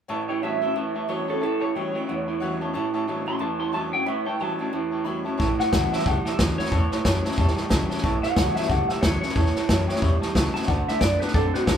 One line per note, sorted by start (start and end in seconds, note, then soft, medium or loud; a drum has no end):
0.08 0.73 A2 medium
0.08 0.27 A2 medium
0.08 0.28 E3 medium
0.08 0.21 C#5 loud
0.08 0.21 E5 loud
0.08 0.21 A5 loud
0.28 0.42 A2 medium
0.28 0.42 E3 medium
0.28 0.37 C#5 medium
0.28 0.42 C#5 loud
0.28 0.37 E5 medium
0.28 0.37 G5 loud
0.43 0.61 A2 medium
0.43 0.62 E3 medium
0.43 0.61 F#3 medium
0.43 0.62 G3 medium
0.43 0.62 C#4 medium
0.43 0.60 E4 medium
0.43 0.55 C#5 medium
0.43 1.07 E5 medium
0.43 0.55 E5 medium
0.43 0.55 A5 medium
0.62 0.74 A2 medium
0.62 0.75 F#3 medium
0.62 0.76 C#4 medium
0.62 0.75 E4 medium
0.62 0.70 C#5 medium
0.62 0.70 E5 medium
0.62 0.71 A5 medium
0.75 1.39 E2 medium
0.75 0.94 A2 medium
0.75 0.94 E3 medium
0.75 0.87 C#5 medium
0.75 0.88 E5 medium
0.75 0.88 A5 medium
0.95 1.08 A2 medium
0.95 1.08 E3 medium
0.95 1.03 C#5 medium
0.95 1.03 E5 medium
0.95 1.04 A5 medium
1.08 1.27 A2 medium
1.08 1.28 E3 medium
1.08 1.27 F#3 medium
1.08 1.28 G3 medium
1.08 1.28 C#4 medium
1.08 1.28 E4 medium
1.08 1.20 C#5 medium
1.08 1.29 C#5 medium
1.08 1.20 E5 medium
1.08 1.21 A5 medium
1.27 1.41 A2 medium
1.27 1.41 F#3 medium
1.27 1.42 E4 medium
1.27 1.42 A4 medium
1.27 1.36 C#5 medium
1.27 1.36 E5 medium
1.27 1.36 A5 medium
1.31 1.43 C#4 soft
1.40 1.60 A2 medium
1.40 2.06 A2 medium
1.40 1.60 E3 medium
1.40 1.62 A4 medium
1.40 1.53 C#5 medium
1.40 1.53 E5 medium
1.40 1.53 A5 loud
1.60 1.74 A2 medium
1.60 1.74 E3 medium
1.60 1.69 C#5 medium
1.60 2.58 C#5 medium
1.60 1.69 E5 medium
1.60 1.69 A5 loud
1.74 1.93 A2 medium
1.74 1.94 E3 medium
1.74 1.94 F#3 medium
1.74 1.94 G3 medium
1.74 1.95 C#4 medium
1.74 1.94 E4 medium
1.74 1.86 C#5 medium
1.74 1.87 E5 medium
1.74 1.87 G5 medium
1.94 2.07 A2 medium
1.94 2.07 F#3 medium
1.94 2.09 C#4 medium
1.94 2.08 E4 medium
1.94 2.03 C#5 medium
1.94 2.03 E5 medium
1.94 2.03 G5 medium
2.07 2.72 E2 medium
2.07 2.26 A2 medium
2.07 2.26 E3 medium
2.07 2.19 C#5 medium
2.07 2.20 E5 medium
2.07 2.20 F#5 medium
2.27 2.40 A2 medium
2.27 2.40 E3 medium
2.27 2.36 C#5 medium
2.27 2.36 E5 medium
2.27 2.36 B5 medium
2.40 2.59 A2 medium
2.40 2.61 E3 medium
2.40 2.60 F#3 medium
2.40 2.61 G3 medium
2.40 2.61 C#4 medium
2.40 2.60 E4 medium
2.40 2.53 C#5 loud
2.40 2.53 E5 loud
2.40 2.53 F#5 loud
2.60 2.74 A2 medium
2.60 2.74 F#3 medium
2.60 2.75 C#4 soft
2.60 2.74 E4 medium
2.60 2.69 C#5 medium
2.60 2.69 E5 medium
2.60 2.69 A5 medium
2.73 2.93 A2 medium
2.73 3.39 A2 medium
2.73 2.93 E3 medium
2.73 2.86 C#5 loud
2.73 2.86 E5 medium
2.73 2.86 A5 loud
2.93 3.06 A2 medium
2.93 3.07 E3 medium
2.93 3.02 C#5 loud
2.93 3.02 E5 loud
2.93 3.02 A5 loud
3.08 3.25 A2 medium
3.08 3.27 E3 medium
3.08 3.26 F#3 medium
3.08 3.27 G3 medium
3.08 3.27 C#4 medium
3.08 3.25 E4 medium
3.08 3.20 C#5 medium
3.08 3.20 E5 medium
3.08 3.20 A5 medium
3.26 3.40 A2 medium
3.26 3.40 F#3 medium
3.26 3.41 C#4 soft
3.26 3.40 E4 medium
3.26 3.36 C#5 medium
3.26 3.35 E5 medium
3.26 3.36 A5 medium
3.26 3.40 C6 loud
3.39 4.04 E2 medium
3.39 3.59 A2 medium
3.39 3.59 E3 medium
3.39 3.52 C#5 medium
3.39 3.52 E5 medium
3.39 3.52 A5 medium
3.39 3.59 A5 medium
3.60 3.72 A2 medium
3.60 3.73 E3 medium
3.60 3.68 C#5 medium
3.60 3.69 E5 medium
3.60 3.69 A5 medium
3.60 3.73 C6 medium
3.72 3.92 A2 medium
3.72 3.92 E3 medium
3.72 3.92 F#3 medium
3.72 3.93 G3 medium
3.72 3.93 C#4 medium
3.72 3.92 E4 medium
3.72 3.85 C#5 loud
3.72 3.85 E5 medium
3.72 3.85 A5 loud
3.72 3.93 A5 medium
3.93 4.06 A2 medium
3.93 4.06 F#3 medium
3.93 4.07 C#4 soft
3.93 4.07 E4 medium
3.93 4.01 C#5 medium
3.93 4.02 E5 medium
3.93 4.02 F#5 medium
3.93 4.07 G5 medium
4.05 4.70 A2 medium
4.05 4.25 A2 medium
4.05 4.25 E3 medium
4.05 4.18 C#5 loud
4.05 4.18 E5 medium
4.05 4.26 E5 medium
4.05 4.18 B5 loud
4.25 4.39 A2 medium
4.25 4.40 E3 medium
4.25 4.34 C#5 medium
4.25 4.34 E5 medium
4.25 4.41 G5 medium
4.25 4.35 A5 loud
4.39 4.58 A2 medium
4.39 4.58 E3 medium
4.39 4.58 F#3 loud
4.39 4.59 G3 medium
4.39 4.59 C#4 medium
4.39 4.58 E4 medium
4.39 4.52 C#5 medium
4.39 4.52 E5 medium
4.39 4.52 A5 medium
4.39 4.73 A5 medium
4.59 4.72 A2 medium
4.59 4.73 F#3 medium
4.59 4.73 C#4 soft
4.59 4.72 E4 medium
4.59 4.67 C#5 medium
4.59 4.68 E5 medium
4.59 4.68 A5 medium
4.73 5.37 E2 medium
4.73 4.91 A2 medium
4.73 4.91 E3 medium
4.73 4.85 C#5 medium
4.73 4.85 E5 medium
4.73 4.85 A5 medium
4.90 5.05 A2 medium
4.90 5.05 E3 medium
4.90 5.00 C#5 medium
4.90 5.00 E5 medium
4.90 5.00 A5 medium
5.04 5.24 A2 medium
5.04 5.25 E3 medium
5.04 5.24 F#3 medium
5.04 5.25 G3 medium
5.04 5.25 C#4 medium
5.04 5.25 E4 medium
5.04 5.17 C#5 loud
5.04 5.17 E5 medium
5.04 5.17 B5 loud
5.24 5.38 A2 medium
5.24 5.38 F#3 medium
5.24 5.40 C#4 soft
5.24 5.39 E4 medium
5.24 5.33 C#5 medium
5.24 5.34 E5 medium
5.24 5.34 A5 loud
5.37 5.56 A1 loud
5.37 6.03 A2 medium
5.37 5.57 A2 medium
5.37 5.58 E3 medium
5.37 5.50 C#5 loud
5.37 5.51 E5 loud
5.37 5.51 A5 loud
5.37 kick loud
5.37 snare soft
5.58 5.71 A2 medium
5.58 5.71 E3 medium
5.58 5.67 C#5 medium
5.58 5.67 E5 medium
5.58 5.92 F#5 loud
5.58 5.67 G5 medium
5.58 muted upright bass stroke medium
5.58 snare soft
5.72 5.89 C#2 medium
5.72 5.90 A2 medium
5.72 6.04 E3 medium
5.72 5.91 F#3 medium
5.72 6.05 G3 medium
5.72 6.05 C#4 medium
5.72 6.05 E4 medium
5.72 5.84 C#5 medium
5.72 5.84 E5 medium
5.72 5.85 A5 medium
5.72 kick medium
5.72 snare loud
5.72 hi-hat pedal medium
5.91 6.05 A2 medium
5.91 6.05 F#3 medium
5.91 6.00 C#5 medium
5.91 6.00 E5 medium
5.91 6.07 E5 medium
5.91 6.00 A5 medium
5.91 snare soft
5.99 snare soft
6.05 6.22 C#2 medium
6.05 6.69 E2 medium
6.05 6.24 A2 medium
6.05 6.24 G3 loud
6.05 6.17 C#5 medium
6.05 6.17 E5 medium
6.05 6.25 F#5 medium
6.05 6.18 A5 loud
6.05 kick loud
6.05 snare soft
6.25 6.37 A2 medium
6.25 6.38 G3 medium
6.25 6.33 C#5 medium
6.25 6.33 E5 medium
6.25 6.38 E5 medium
6.25 6.33 A5 medium
6.25 muted upright bass stroke medium
6.25 snare soft
6.38 6.55 D2 medium
6.38 6.56 A2 medium
6.38 6.58 E3 medium
6.38 6.57 F#3 medium
6.38 6.58 G3 medium
6.38 6.58 C#4 medium
6.38 6.57 E4 medium
6.38 6.50 C#5 medium
6.38 6.57 C#5 medium
6.38 6.50 E5 medium
6.38 6.51 A5 medium
6.38 kick medium
6.38 snare loud
6.38 hi-hat pedal medium
6.57 6.71 A2 medium
6.57 6.71 F#3 medium
6.57 6.72 C#4 soft
6.57 6.71 E4 medium
6.57 6.66 C#5 medium
6.57 7.54 C#5 loud
6.57 6.66 E5 medium
6.57 6.67 F#5 medium
6.57 muted upright bass stroke medium
6.57 snare soft
6.65 snare soft
6.70 6.88 E2 loud
6.70 7.35 A2 medium
6.70 6.90 A2 medium
6.70 6.90 E3 medium
6.70 6.83 C#5 loud
6.70 6.83 E5 medium
6.70 6.83 A5 loud
6.70 kick loud
6.70 snare soft
6.90 7.04 A2 medium
6.90 7.04 E3 medium
6.90 6.99 C#5 medium
6.90 6.99 E5 medium
6.90 7.00 A5 medium
6.90 muted upright bass stroke medium
6.90 snare soft
7.04 7.21 F#2 medium
7.04 7.23 A2 medium
7.04 7.24 E3 medium
7.04 7.23 F#3 loud
7.04 7.24 G3 medium
7.04 7.24 C#4 medium
7.04 7.24 E4 medium
7.04 7.16 C#5 medium
7.04 7.17 E5 medium
7.04 7.17 A5 loud
7.04 kick medium
7.04 snare loud
7.04 hi-hat pedal loud
7.24 7.37 A2 medium
7.24 7.37 F#3 medium
7.24 7.38 C#4 soft
7.24 7.38 E4 medium
7.24 7.32 C#5 medium
7.24 7.33 E5 medium
7.24 7.33 A5 medium
7.24 muted upright bass stroke medium
7.24 snare soft
7.31 snare soft
7.37 7.54 E2 medium
7.37 8.01 E2 medium
7.37 7.56 A2 medium
7.37 7.56 G3 loud
7.37 7.50 C#5 loud
7.37 7.50 E5 loud
7.37 7.50 A5 loud
7.37 kick loud
7.37 snare soft
7.47 snare soft
7.55 7.70 A2 medium
7.55 7.70 G3 loud
7.55 7.65 C#5 medium
7.55 7.65 E5 medium
7.55 7.65 A5 medium
7.55 snare soft
7.69 7.87 C#2 loud
7.69 7.89 A2 medium
7.69 8.02 E3 medium
7.69 7.89 F#3 medium
7.69 8.02 G3 medium
7.69 8.02 C#4 loud
7.69 8.03 E4 medium
7.69 7.82 C#5 medium
7.69 7.82 E5 medium
7.69 7.82 A5 loud
7.69 kick medium
7.69 snare loud
7.69 hi-hat pedal medium
7.89 8.02 A2 medium
7.89 8.03 F#3 medium
7.89 7.98 C#5 medium
7.89 7.98 E5 medium
7.89 7.98 A5 loud
7.89 muted upright bass stroke medium
7.89 snare soft
7.98 snare soft
8.03 8.20 A1 medium
8.03 8.67 A2 medium
8.03 8.22 A2 loud
8.03 8.22 E3 medium
8.03 8.15 C#5 loud
8.03 8.15 E5 loud
8.03 8.15 A5 loud
8.03 kick loud
8.03 snare soft
8.21 8.36 A2 medium
8.21 8.36 E3 loud
8.21 8.30 C#5 medium
8.21 8.31 F#5 medium
8.21 8.55 F#5 loud
8.21 snare soft
8.35 8.53 C#2 medium
8.35 8.55 A2 medium
8.35 8.68 E3 medium
8.35 8.55 F#3 loud
8.35 8.69 G3 medium
8.35 8.69 C#4 medium
8.35 8.69 E4 medium
8.35 8.48 C#5 medium
8.35 8.48 E5 medium
8.35 8.48 A5 medium
8.35 kick medium
8.35 snare loud
8.35 hi-hat pedal medium
8.55 8.69 A2 medium
8.55 8.70 F#3 medium
8.55 8.64 C#5 medium
8.55 8.64 E5 medium
8.55 8.69 E5 medium
8.55 8.64 A5 medium
8.55 snare soft
8.62 snare soft
8.68 8.86 C#2 medium
8.68 9.34 E2 loud
8.68 8.88 A2 medium
8.68 8.88 G3 medium
8.68 8.81 C#5 medium
8.68 8.81 E5 medium
8.68 8.88 F#5 medium
8.68 8.81 A5 loud
8.68 kick loud
8.68 snare soft
8.88 9.02 A2 medium
8.88 9.02 G3 medium
8.88 8.97 C#5 medium
8.88 8.97 E5 medium
8.88 9.02 E5 medium
8.88 8.97 A5 medium
8.88 muted upright bass stroke medium
8.88 snare soft
9.01 9.19 D2 loud
9.01 9.21 A2 medium
9.01 9.21 E3 medium
9.01 9.21 F#3 loud
9.01 9.22 G3 medium
9.01 9.22 C#4 medium
9.01 9.22 E4 medium
9.01 9.20 C#5 medium
9.01 9.14 C#5 medium
9.01 9.14 E5 medium
9.01 9.15 A5 medium
9.01 kick medium
9.01 snare loud
9.01 hi-hat pedal medium
9.21 9.35 A2 medium
9.21 9.35 F#3 medium
9.21 9.36 C#4 soft
9.21 9.36 E4 medium
9.21 10.18 C#5 loud
9.21 9.30 C#5 medium
9.21 9.31 E5 medium
9.21 9.31 A5 medium
9.21 snare soft
9.29 snare soft
9.35 9.52 E2 medium
9.35 9.53 A2 medium
9.35 10.00 A2 medium
9.35 9.54 E3 medium
9.35 9.48 C#5 medium
9.35 9.48 E5 medium
9.35 9.48 A5 loud
9.35 kick loud
9.35 snare soft
9.46 snare soft
9.55 9.68 A2 medium
9.55 9.68 E3 medium
9.55 9.64 C#5 medium
9.55 9.64 E5 medium
9.55 9.64 A5 medium
9.55 snare soft
9.68 9.85 F#2 medium
9.68 9.87 A2 medium
9.68 9.87 E3 medium
9.68 9.87 F#3 medium
9.68 9.88 G3 medium
9.68 9.88 C#4 medium
9.68 9.86 E4 medium
9.68 9.80 C#5 medium
9.68 9.80 E5 medium
9.68 9.81 A5 loud
9.68 kick medium
9.68 snare loud
9.68 hi-hat pedal medium
9.87 10.01 A2 medium
9.87 10.01 F#3 medium
9.87 10.02 C#4 medium
9.87 10.01 E4 medium
9.87 9.96 C#5 medium
9.87 9.96 E5 medium
9.87 9.96 G5 loud
9.87 muted upright bass stroke medium
9.87 snare soft
9.96 snare soft
10.01 10.65 E2 medium
10.01 10.18 E2 medium
10.01 10.20 A2 medium
10.01 10.20 G3 medium
10.01 10.14 C#5 loud
10.01 10.14 E5 medium
10.01 10.14 B5 loud
10.01 kick loud
10.01 snare soft
10.21 10.33 A2 medium
10.21 10.34 G3 medium
10.21 10.29 C#5 medium
10.21 10.30 E5 medium
10.21 10.30 A5 medium
10.21 snare soft
10.34 10.51 C#2 loud
10.34 10.53 A2 medium
10.34 10.53 E3 medium
10.34 10.53 F#3 medium
10.34 10.54 G3 medium
10.34 10.54 C#4 medium
10.34 10.53 E4 loud
10.34 10.47 C#5 medium
10.34 10.47 E5 medium
10.34 10.47 A5 medium
10.34 kick medium
10.34 snare loud
10.34 hi-hat pedal medium
10.54 10.67 A2 medium
10.54 10.67 F#3 medium
10.54 10.68 C#4 soft
10.54 10.68 E4 medium
10.54 10.63 C#5 medium
10.54 10.63 F#5 medium
10.54 10.67 A5 loud
10.54 muted upright bass stroke medium
10.54 snare soft
10.62 snare soft
10.67 10.84 D2 medium
10.67 10.99 D3 medium
10.67 10.86 D3 medium
10.67 10.86 A3 medium
10.67 10.80 D5 medium
10.67 10.87 F#5 medium
10.67 10.80 F#5 medium
10.67 10.80 A5 loud
10.67 kick loud
10.67 snare soft
10.88 11.00 D3 medium
10.88 11.01 A3 medium
10.88 10.96 D5 medium
10.88 11.00 E5 medium
10.88 10.96 F#5 medium
10.88 10.97 A5 medium
10.88 snare soft
11.00 11.17 F#2 loud
11.00 11.20 D3 medium
11.00 11.19 D3 medium
11.00 11.20 A3 medium
11.00 11.19 B3 medium
11.00 11.20 C4 medium
11.00 11.20 F#4 loud
11.00 11.20 D5 medium
11.00 11.13 D5 medium
11.00 11.13 F#5 medium
11.00 11.14 B5 medium
11.00 kick medium
11.00 snare loud
11.00 hi-hat pedal medium
11.20 11.33 D3 medium
11.20 11.33 B3 medium
11.20 11.34 C4 medium
11.20 11.34 F#4 medium
11.20 11.33 B4 medium
11.20 11.30 D5 medium
11.20 11.30 F#5 medium
11.20 11.30 A5 medium
11.20 snare soft
11.28 snare soft
11.34 11.50 F#2 medium
11.34 11.77 A2 medium
11.34 11.52 D3 medium
11.34 11.53 C4 medium
11.34 11.53 A4 medium
11.34 11.46 D5 loud
11.34 11.46 F#5 medium
11.34 11.46 A5 loud
11.34 kick loud
11.34 snare soft
11.53 11.66 D3 medium
11.53 11.67 C4 medium
11.53 11.65 F#4 medium
11.53 11.62 D5 medium
11.53 11.62 F#5 medium
11.53 11.62 B5 medium
11.53 muted upright bass stroke medium
11.53 snare soft
11.66 11.77 B1 medium
11.66 11.77 D3 medium
11.66 11.77 A3 medium
11.66 11.77 B3 medium
11.66 11.77 C4 medium
11.66 11.77 F#4 loud
11.66 11.77 F#4 medium
11.66 11.77 D5 medium
11.66 11.77 F#5 medium
11.66 11.77 A5 medium
11.66 kick medium
11.66 snare loud
11.66 hi-hat pedal medium